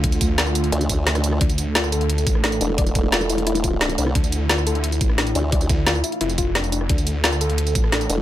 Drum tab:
HH |xxx-x-xxxxx-xxx-|xxx-x-xxxxx-xxx-|xxx-x-xxxxx-xxx-|xxx-x-xxxxx-xxx-|
TB |-xx--xx--xx--xx-|-xx--xx--xx--xx-|-xx--xx--xx--xx-|-xx--xx--xx--xx-|
SD |----or--r---or-r|----or-----ro---|----or--r---o--r|----or-----ro---|
BD |o-o-------o-----|o---------o-----|o-o-------o-----|o---------o-----|

HH |xxx-x-xxxxx-xxx-|xxx-x-xxxxx-xxx-|
TB |-xx--xx--xx--xx-|-xx--xx--xx--xx-|
SD |----or--r---o--r|----or-----ro---|
BD |o-o-------o-----|o---------o-----|